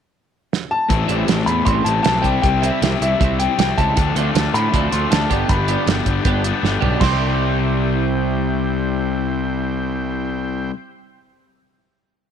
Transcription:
0.53 snare
0.71 A5
0.89 A1 A2 E3 A3 C4 E4, muted clean electric guitar stroke, kick, closed hi-hat
1.08 A1 G3 A3 C4 E4, closed hi-hat
1.27 A1 A2 E3 A3 C4 E4, muted clean electric guitar stroke, snare, closed hi-hat
1.46 E2 A3 C4 E4 B5, muted clean electric guitar stroke, closed hi-hat
1.65 A1 G3 C4 E4 C6, kick, closed hi-hat
1.84 A1 C4 E4 A5, muted clean electric guitar stroke, closed hi-hat
1.89 A3
2.03 B1 E3 A3 A5, muted clean electric guitar stroke, snare, closed hi-hat
2.07 C4 E4
2.22 C2 G3 C4 E4 G5, kick, closed hi-hat
2.26 C3 G3
2.42 C2 C3 G3 C4 G5, muted clean electric guitar stroke, kick, closed hi-hat
2.46 E4
2.62 G3 C4 E4 E5, closed hi-hat
2.81 C2 C3 G3 C4 E4, muted clean electric guitar stroke, snare, closed hi-hat
3.01 C2 G3 C4 E4 E5, muted clean electric guitar stroke, closed hi-hat
3.20 C2 G3 C4 E4, kick, closed hi-hat
3.39 G3 C4 E4 G5, muted clean electric guitar stroke, closed hi-hat
3.58 C2 C3 G3 C4 E4 G5, muted clean electric guitar stroke, snare, closed hi-hat
3.78 C#2 G3 C4 E4 A5, kick, closed hi-hat
3.96 D2 D3 F3 A3 D4 A4 C5 F5, muted clean electric guitar stroke, kick, closed hi-hat
4.15 D2 F3 A3 C4 D4 A4, closed hi-hat
4.34 D2 D3 F3 A3 D4, muted clean electric guitar stroke, snare, closed hi-hat
4.53 A2 F3 A3 D4 B5, muted clean electric guitar stroke, closed hi-hat
4.73 D2 F3 C4 D4 A4, kick, closed hi-hat
4.91 D2 F3 A3 D4 C6, muted clean electric guitar stroke, closed hi-hat
5.11 D2 D3 F3 A3 D4 A5, muted clean electric guitar stroke, snare, closed hi-hat
5.30 G1 G2 D3 G3 B3 D4 G4 B4 G5, kick, closed hi-hat
5.49 G1 G2 D3 G3 B3 D4 B5, muted clean electric guitar stroke, kick, closed hi-hat
5.68 B3 D4 G4, closed hi-hat
5.72 G3
5.87 G1 G2 D3 G3 B3 D4, muted clean electric guitar stroke, snare, closed hi-hat
6.06 G1 G3 B3 D4, muted clean electric guitar stroke, kick, closed hi-hat
6.25 G1 B3 D4 G4, kick, closed hi-hat
6.44 G3 B3 D4, muted clean electric guitar stroke, closed hi-hat
6.63 G1 D3 G3 B3 D4, muted clean electric guitar stroke, snare
6.81 B1 B3 D4 G4, floor tom
7.00 C2 C3 G3 C4 E4 G4 C5 G5 C6, kick, snare, crash
7.04 G4

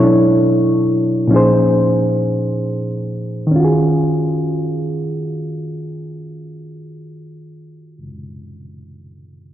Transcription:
Already playing: B2 F#3 E4
0.00 D4 A4 C#5
1.27 A#2 F3 C#4
1.32 D#4 G#4 C5
3.47 D#3
3.51 C#4
3.56 F4
3.60 F#4
3.64 G#4

